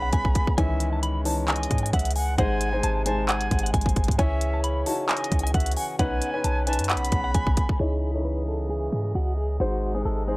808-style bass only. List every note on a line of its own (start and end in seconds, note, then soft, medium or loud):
0.00 0.12 B1 loud
0.13 0.35 B1 loud
0.58 1.67 C#2 loud
1.71 1.92 G#2 loud
1.93 2.37 C#2 loud
2.38 2.82 G#1 loud
2.84 3.49 G#1 loud
3.51 3.73 G#1 loud
3.74 4.10 G#1 loud
4.08 4.18 G#2 loud
4.19 4.84 C#2 loud
5.32 5.53 C#2 loud
5.54 5.76 C#2 loud
5.99 6.21 B1 loud
6.44 6.81 B1 loud
6.79 6.97 F#2 loud
6.96 7.11 B1 loud
7.12 7.34 B1 loud
7.35 7.56 B1 loud
7.80 8.89 C#2 loud
8.93 9.14 G#2 loud
9.15 9.58 C#2 loud
9.60 10.04 G#1 loud
10.05 10.37 G#1 loud